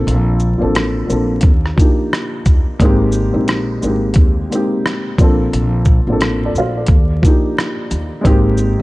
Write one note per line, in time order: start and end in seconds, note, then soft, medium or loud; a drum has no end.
0.00 0.41 F3 loud
0.00 0.41 A#3 medium
0.00 0.42 C4 medium
0.00 0.43 D4 medium
0.00 0.43 A4 loud
0.07 0.55 A#1 loud
0.07 closed hi-hat medium
0.40 shaker soft
0.58 1.04 A1 medium
0.58 0.98 F3 medium
0.58 0.98 A#3 medium
0.58 0.99 C4 medium
0.62 1.00 D4 medium
0.62 1.00 A4 medium
0.75 cross-stick loud
0.75 closed hi-hat medium
1.07 1.40 A#1 medium
1.07 1.42 F3 medium
1.07 1.43 A#3 medium
1.07 1.44 C4 medium
1.07 shaker soft
1.11 1.44 D4 medium
1.11 1.45 A4 medium
1.41 1.74 D#2 loud
1.41 kick medium
1.41 closed hi-hat medium
1.66 cross-stick soft
1.76 2.57 F3 medium
1.76 2.57 A#3 medium
1.76 2.58 D4 medium
1.76 kick medium
1.76 closed hi-hat soft
1.76 shaker soft
1.81 2.59 D#4 medium
1.81 2.59 G4 medium
2.13 cross-stick loud
2.13 closed hi-hat medium
2.46 2.64 D#2 medium
2.46 kick medium
2.46 closed hi-hat soft
2.46 shaker soft
2.79 3.28 G#1 loud
2.79 3.19 G#3 loud
2.79 3.20 A#3 loud
2.79 3.21 C4 loud
2.79 3.21 D#4 loud
2.79 kick loud
2.79 closed hi-hat medium
2.85 3.22 G4 loud
3.12 shaker soft
3.31 3.77 A#1 medium
3.31 3.70 G#3 medium
3.31 3.71 A#3 medium
3.31 3.72 C4 medium
3.35 3.73 D#4 medium
3.35 3.73 G4 medium
3.48 cross-stick loud
3.48 closed hi-hat medium
3.81 4.13 G#1 medium
3.81 4.37 G#3 medium
3.81 4.37 A#3 medium
3.81 4.38 C4 medium
3.81 shaker soft
3.85 4.39 D#4 medium
3.85 4.39 G4 medium
4.14 4.46 D#2 medium
4.14 kick loud
4.14 closed hi-hat medium
4.50 5.18 G#3 medium
4.50 5.18 A#3 medium
4.50 5.20 C4 medium
4.50 closed hi-hat soft
4.50 shaker soft
4.54 5.20 D#4 medium
4.54 5.21 G4 medium
4.86 cross-stick loud
4.86 closed hi-hat medium
5.18 5.49 A#1 medium
5.18 5.87 F3 medium
5.18 5.87 A#3 medium
5.18 5.88 C4 medium
5.18 kick loud
5.18 closed hi-hat soft
5.18 shaker soft
5.23 5.89 D4 medium
5.23 5.89 A4 medium
5.53 6.01 A#1 loud
5.53 closed hi-hat medium
5.85 kick medium
5.85 shaker soft
6.07 6.49 A1 medium
6.07 6.45 F3 medium
6.07 6.46 A#3 medium
6.07 6.46 C4 medium
6.11 6.47 D4 medium
6.11 6.24 A4 medium
6.21 cross-stick loud
6.21 closed hi-hat medium
6.45 6.57 A4 medium
6.45 6.56 D5 medium
6.55 6.85 A#1 medium
6.55 6.76 C5 medium
6.55 6.76 F5 medium
6.55 shaker soft
6.77 7.09 A4 medium
6.77 7.08 D5 medium
6.87 7.19 D#2 medium
6.87 kick loud
6.87 closed hi-hat medium
7.22 8.02 F3 medium
7.22 8.03 A#3 medium
7.22 8.04 D4 medium
7.22 kick loud
7.22 closed hi-hat soft
7.22 shaker soft
7.26 8.04 D#4 medium
7.26 8.05 G4 medium
7.58 cross-stick loud
7.58 closed hi-hat medium
7.91 8.09 D#2 medium
7.91 closed hi-hat soft
7.91 shaker soft
8.21 8.73 G#1 loud
8.21 8.63 G#3 loud
8.21 8.64 A#3 loud
8.21 8.64 C4 loud
8.21 kick loud
8.25 8.65 D#4 medium
8.25 8.66 G4 loud
8.25 closed hi-hat medium
8.58 shaker soft
8.78 8.82 G#3 medium